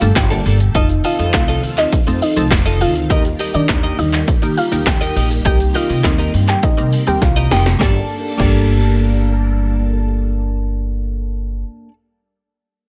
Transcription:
Already playing: string machine A#2 D3 G4 A4
0.01 upright bass G1, synth pluck G3 A3 A#3 D4 A4, muted clean electric guitar stroke, closed hi-hat, shaker
0.16 upright bass G1, synth pluck G4 G5, muted clean electric guitar stroke, kick, snare, clap, closed hi-hat, shaker
0.30 clean electric guitar A#3 D4 A4, closed hi-hat, shaker
0.45 upright bass G1, clean electric guitar A#3 D4 A4, open hi-hat, shaker
0.60 muted clean electric guitar stroke, closed hi-hat, shaker
0.75 upright bass F1, string machine D#3 C4 F4, synth pluck D#4 D#5, clean electric guitar F4 A4 D#5, kick, closed hi-hat, shaker
0.89 muted clean electric guitar stroke, closed hi-hat, shaker
1.04 clean electric guitar F4 A4 D#5, synth pluck F4 F5, open hi-hat, shaker
1.19 upright bass F2, clean electric guitar F4 A4 D#5, closed hi-hat, shaker
1.34 upright bass C2, synth pluck F3 A3 C4 D#4 F4 A4 F5, kick, snare, clap, closed hi-hat, shaker
1.48 clean electric guitar F4 A4 D#5, closed hi-hat, shaker
1.63 upright bass D#2, open hi-hat, shaker
1.78 synth pluck D#4 D#5, muted clean electric guitar stroke, clap, closed hi-hat, shaker
1.92 muted clean electric guitar stroke, muted upright bass stroke, kick, closed hi-hat, shaker
2.07 upright bass F2, synth pluck F3 A3 C4 D#4 A4, muted clean electric guitar stroke, closed hi-hat, shaker
2.22 synth pluck D#4 D#5, open hi-hat, shaker
2.36 upright bass C2, synth pluck F3 A3 C4 D#4 A4, muted clean electric guitar stroke, closed hi-hat, shaker
2.51 upright bass F1, muted clean electric guitar stroke, kick, snare, clap, closed hi-hat, shaker
2.66 clean electric guitar F4 A4 D#5, closed hi-hat, shaker
2.80 upright bass D2, clean electric guitar F4 A4 D#5, synth pluck F4 F5, open hi-hat, shaker
2.95 closed hi-hat, shaker
3.10 upright bass D#2, string machine G3 A#3 G4, synth pluck D#4 D#5, clean electric guitar G4 A#4 D#5, kick, closed hi-hat, shaker
3.25 muted clean electric guitar stroke, closed hi-hat, shaker
3.39 clean electric guitar G4 A#4 D#5, open hi-hat, shaker
3.54 upright bass D#3, synth pluck D4 D5, clean electric guitar G4 A#4 D#5, closed hi-hat, shaker
3.69 upright bass D#2, synth pluck A#3 D#4 G4, kick, snare, clap, closed hi-hat, shaker
3.83 clean electric guitar G4 A#4 D#5, closed hi-hat, shaker
3.98 upright bass D#2, synth pluck D#4 D#5, muted clean electric guitar stroke, open hi-hat, shaker
4.13 muted clean electric guitar stroke, clap, closed hi-hat, shaker
4.28 muted clean electric guitar stroke, muted upright bass stroke, kick, closed hi-hat, shaker
4.42 upright bass D#3, synth pluck A#3 D#4 G4, muted clean electric guitar stroke, closed hi-hat, shaker
4.57 synth pluck F4 F5, open hi-hat, shaker
4.72 upright bass D#2, synth pluck A#3 D#4 G4, muted clean electric guitar stroke, closed hi-hat, shaker
4.86 upright bass D#2, synth pluck G4 G5, muted clean electric guitar stroke, kick, snare, clap, closed hi-hat, shaker
5.01 clean electric guitar G4 A#4 D#5, closed hi-hat, shaker
5.16 upright bass A#1, clean electric guitar G4 A#4 D#5, open hi-hat, shaker
5.30 muted clean electric guitar stroke, closed hi-hat, shaker
5.45 upright bass C2, string machine C4, clean electric guitar G4 A#4 D#5, synth pluck G4 G5, kick, closed hi-hat, shaker
5.60 muted clean electric guitar stroke, closed hi-hat, shaker
5.74 synth pluck F4 F5, clean electric guitar G4 A#4 D#5, open hi-hat, shaker
5.89 upright bass C3, clean electric guitar G4 A#4 D#5, closed hi-hat, shaker
6.04 upright bass D#2, synth pluck G3 A#3 C4 D#4 A#4 D#5, kick, snare, clap, closed hi-hat, shaker
6.19 clean electric guitar G4 A#4 D#5, closed hi-hat, shaker
6.33 upright bass G2, muted clean electric guitar stroke, open hi-hat, shaker
6.48 synth pluck G4 G5, muted clean electric guitar stroke, clap, closed hi-hat, shaker
6.63 synth pluck D#4 D#5, muted clean electric guitar stroke, muted upright bass stroke, kick, closed hi-hat, shaker
6.77 upright bass C3, synth pluck G3 A#3 C4 D#4 A#4, muted clean electric guitar stroke, closed hi-hat, shaker
6.93 open hi-hat, shaker
7.07 upright bass D#2, synth pluck G3 A#3 C4 D#4 G4 G5, muted clean electric guitar stroke, closed hi-hat, shaker
7.22 upright bass C2, synth pluck F4 F5, muted clean electric guitar stroke, kick, snare, closed hi-hat, shaker
7.36 clean electric guitar G4 A#4 D#5, closed hi-hat, shaker
7.51 upright bass F1, clean electric guitar G4 A#4 D#5, synth pluck G4 G5, snare, open hi-hat, shaker
7.66 muted clean electric guitar stroke, snare, closed hi-hat, shaker
7.79 upright bass G1, synth pluck G3 A#3 D4 G4, string machine G3 A#3 D4 A4, clean electric guitar A#3 D4, kick, snare
7.83 synth pluck A4, clean electric guitar A4
8.37 upright bass G1, synth pluck G3 A#3 D4 G4, clean electric guitar A#3 D4, kick, crash
8.41 synth pluck A4, clean electric guitar A4

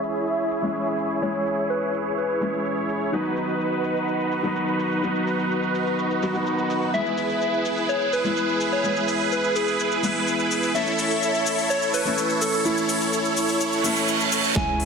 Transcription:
Already playing: grand piano E3 G#3 C#4 E4, supersaw synth E4 G#4 C#5, soft synth lead E5
0.04 open hi-hat, shaker
0.16 shaker
0.28 shaker
0.39 shaker
0.51 open hi-hat, shaker
0.62 grand piano E3 G#3 C#4 E4, shaker
0.75 shaker
0.87 shaker
0.99 open hi-hat, shaker
1.11 shaker
1.21 grand piano E3 G#3 C#4 E4, soft synth lead C#5, shaker
1.35 shaker
1.46 open hi-hat, shaker
1.58 shaker
1.70 soft synth lead B4, shaker
1.82 shaker
1.94 open hi-hat, shaker
2.06 shaker
2.18 soft synth lead B4, shaker
2.30 shaker
2.40 grand piano E3 G#3 C#4 E4, open hi-hat, shaker
2.54 shaker
2.66 shaker
2.77 shaker
2.89 open hi-hat, shaker
3.01 shaker
3.12 grand piano D#3 F#3 B3 D#4, supersaw synth D#4 F#4 B4, shaker
3.25 shaker
3.37 open hi-hat, shaker
3.49 shaker
3.61 shaker
3.73 shaker
3.84 open hi-hat, shaker
3.96 shaker
4.08 shaker
4.20 shaker
4.32 open hi-hat, shaker
4.43 grand piano D#3 F#3 B3 D#4, shaker
4.56 shaker
4.68 shaker
4.80 open hi-hat, shaker
4.92 shaker
5.02 grand piano D#3 F#3 B3 D#4, shaker
5.16 shaker
5.27 open hi-hat, shaker
5.39 shaker
5.51 shaker
5.63 shaker
5.75 open hi-hat, shaker
5.87 shaker
5.99 shaker
6.11 shaker
6.22 grand piano D#3 F#3 B3 F#4, open hi-hat, shaker
6.33 grand piano D#3 F#3 B3 D#4, shaker
6.46 shaker
6.58 shaker
6.70 open hi-hat, shaker
6.82 shaker
6.93 grand piano E3 G#3 B3 E4, supersaw synth E4 G#4 B4, soft synth lead E5, shaker
7.06 shaker
7.18 open hi-hat, shaker
7.30 shaker
7.42 shaker
7.54 shaker
7.65 open hi-hat, shaker
7.77 shaker
7.89 soft synth lead C#5, shaker
8.01 shaker
8.13 soft synth lead B4, open hi-hat, shaker
8.24 grand piano E3 G#3 B3 E4, shaker
8.37 soft synth lead B4, shaker
8.49 shaker
8.61 open hi-hat, shaker
8.73 soft synth lead C#5, shaker
8.83 grand piano E3 G#3 B3 E4, shaker
8.96 shaker
9.08 open hi-hat, shaker
9.20 shaker
9.32 soft synth lead B4, shaker
9.44 shaker
9.56 soft synth lead G#4, open hi-hat, shaker
9.68 shaker
9.80 shaker
9.92 shaker
10.02 grand piano E3 G#3 B3 E4, open hi-hat, shaker
10.16 shaker
10.27 shaker
10.39 shaker
10.51 open hi-hat, shaker
10.63 shaker
10.74 grand piano E3 A3 C#4 E4, supersaw synth E4 A4 C#5, soft synth lead E5, shaker
10.87 shaker
10.99 open hi-hat, shaker
11.11 shaker
11.23 shaker
11.35 shaker
11.46 open hi-hat, shaker
11.58 shaker
11.70 soft synth lead C#5, shaker
11.82 shaker
11.94 soft synth lead B4, open hi-hat, shaker
12.05 grand piano E3 A3 C#4 E4, shaker
12.18 shaker
12.30 shaker
12.42 soft synth lead A4, open hi-hat, shaker
12.54 shaker
12.64 grand piano E3 A3 C#4 E4, soft synth lead E4, shaker
12.77 shaker
12.89 open hi-hat, shaker
13.01 shaker
13.13 shaker
13.25 shaker
13.37 open hi-hat, shaker
13.49 shaker
13.61 reverse cymbal, shaker
13.73 shaker
13.83 grand piano E3 A3 C#4 E4, open hi-hat, shaker
13.96 shaker
14.08 shaker
14.20 shaker
14.32 open hi-hat, shaker
14.44 shaker
14.55 sub bass C#2, grand piano E3 G#3 C#4 E4, supersaw synth E4 G#4 C#5, soft synth lead G#5, kick, snare, riser
14.80 open hi-hat

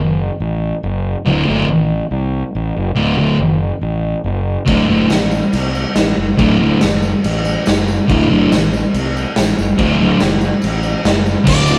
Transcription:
0.00 fingered electric bass F#1
0.40 fingered electric bass A1
0.83 fingered electric bass F#1
1.25 fingered electric bass D1, distorted electric guitar D2 A2 D3
1.46 fingered electric bass F#1, distorted electric guitar D2 A2 D3
1.69 fingered electric bass A1
2.11 fingered electric bass C2
2.55 fingered electric bass A1
2.77 fingered electric bass F#1
2.96 fingered electric bass D1, distorted electric guitar D2 A2 D3
3.17 distorted electric guitar D2 A2 D3
3.39 fingered electric bass F#1
3.81 fingered electric bass A1
4.24 fingered electric bass F#1
4.65 fingered electric bass D1, distorted electric guitar D2 A2 D3, kick, crash
4.88 fingered electric bass F#1, distorted electric guitar D2 A2 D3
5.09 fingered electric bass A1, snare, tambourine, crash
5.31 tambourine
5.53 fingered electric bass C2, tambourine, crash
5.75 tambourine
5.95 fingered electric bass A1, snare, tambourine, crash
6.17 fingered electric bass F#1
6.37 fingered electric bass D1, distorted electric guitar D2 A2 D3, kick, crash
6.58 distorted electric guitar D2 A2 D3
6.81 fingered electric bass F#1, snare, tambourine, crash
7.02 tambourine
7.24 fingered electric bass A1, tambourine, crash
7.45 tambourine
7.66 fingered electric bass F#1, snare, tambourine, crash
7.88 tambourine
8.08 fingered electric bass D1, distorted electric guitar D2 A2 D3, kick, crash
8.30 fingered electric bass F#1, distorted electric guitar D2 A2 D3
8.52 fingered electric bass A1, snare, tambourine, crash
8.73 tambourine
8.94 fingered electric bass C2, tambourine, crash
9.17 tambourine
9.36 fingered electric bass A1, snare, tambourine, crash
9.58 fingered electric bass F#1, tambourine
9.78 fingered electric bass D1, distorted electric guitar D2 A2 D3, kick, tambourine, crash
9.98 distorted electric guitar D2 A2 D3
10.20 fingered electric bass F#1, snare, tambourine, crash
10.41 tambourine
10.62 fingered electric bass A1, tambourine, crash
10.83 tambourine
11.05 fingered electric bass F#1, snare, tambourine, crash
11.26 tambourine
11.44 fingered electric bass D1, distorted electric guitar D2 A2 D3, kick, crash, tambourine
11.49 lead electric guitar D5
11.67 distorted electric guitar D2 A2 D3, ride, tambourine

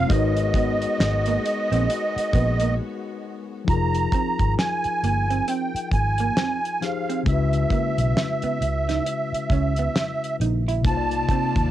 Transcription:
Already playing: tine electric piano C3 A#3 D#4 F4 F5, accordion F5
0.06 tine electric piano G#3 D#4 F#4, string section B3 F#4, accordion D#5, kick
0.10 fingered electric bass G#1, string section G#3, clean electric guitar D#4, tine electric piano A#4 B4, closed hi-hat
0.15 tine electric piano C#5
0.37 closed hi-hat
0.54 clean electric guitar B3, kick, closed hi-hat
0.82 closed hi-hat
1.00 fingered electric bass G#1, snare, closed hi-hat
1.26 clean electric guitar A#3, closed hi-hat
1.46 muted clean electric guitar stroke, closed hi-hat
1.72 fingered electric bass A#1, clean electric guitar C4, closed hi-hat
1.90 muted clean electric guitar stroke, closed hi-hat
2.16 muted fingered electric bass stroke, closed hi-hat
2.33 fingered electric bass A#1, clean electric guitar B3, kick, closed hi-hat
2.60 clean electric guitar A#3, closed hi-hat
3.65 fingered electric bass F1, tine electric piano F3 D#4, kick
3.69 tine electric piano F4 G#4, accordion A#5, closed hi-hat
3.73 tine electric piano A#4
3.94 closed hi-hat
4.12 clean electric guitar C4, kick, closed hi-hat
4.39 fingered electric bass G#1, kick, closed hi-hat
4.58 accordion G#5, muted clean electric guitar stroke, snare, closed hi-hat
4.84 muted fingered electric bass stroke, closed hi-hat
5.03 fingered electric bass G1, clean electric guitar A#3, closed hi-hat
5.30 clean electric guitar C4, closed hi-hat
5.48 clean electric guitar C4, accordion G5, closed hi-hat
5.74 muted fingered electric bass stroke, closed hi-hat
5.92 fingered electric bass G#1, accordion G#5, muted clean electric guitar stroke, kick, closed hi-hat
6.18 clean electric guitar A#3, closed hi-hat
6.37 clean electric guitar C4, snare, closed hi-hat
6.65 closed hi-hat
6.81 tine electric piano F3 D#4 G4 G#4, accordion F5, muted clean electric guitar stroke, snare, closed hi-hat
6.85 tine electric piano C5
7.10 clean electric guitar C4, closed hi-hat
7.23 fingered electric bass C#2, tine electric piano C#3 G#3 C#4, kick, closed hi-hat
7.28 tine electric piano E4 F#4, accordion E5
7.32 tine electric piano B4
7.53 closed hi-hat
7.70 clean electric guitar A#3, kick, closed hi-hat
7.98 fingered electric bass B1, closed hi-hat
8.17 snare, closed hi-hat
8.42 clean electric guitar B3, muted fingered electric bass stroke, closed hi-hat
8.61 fingered electric bass C#2, muted clean electric guitar stroke, closed hi-hat
8.89 clean electric guitar D#4, snare, closed hi-hat
9.06 muted clean electric guitar stroke, closed hi-hat
9.32 muted fingered electric bass stroke, closed hi-hat
9.50 fingered electric bass C#2, clean electric guitar C#4, kick, closed hi-hat
9.76 clean electric guitar B3, closed hi-hat
9.96 muted clean electric guitar stroke, snare, closed hi-hat
10.24 closed hi-hat
10.40 fingered electric bass A#1, clean electric guitar D#4, closed hi-hat
10.68 clean electric guitar E4, closed hi-hat
10.81 fingered electric bass C2, tine electric piano C3 A#3, string section C3 A#3 D#4 F4 D5, kick
10.85 tine electric piano D#4 F4, accordion A5, closed hi-hat
10.90 tine electric piano C5
10.97 tine electric piano D5
11.11 closed hi-hat
11.29 clean electric guitar C4, kick, closed hi-hat
11.56 fingered electric bass D#2, kick, closed hi-hat

